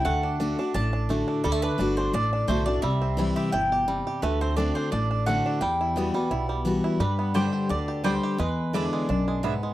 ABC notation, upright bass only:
X:1
M:4/4
L:1/8
Q:1/4=173
K:Dmix
V:1 name="Upright bass" clef=bass
D,,4 A,,,4 | D,,2 G,,,2 A,,,2 B,,,2 | C,,4 G,,,4 | D,,4 A,,,4 |
E,,4 B,,,4 | G,,4 D,,4 | E,,4 B,,,4 |]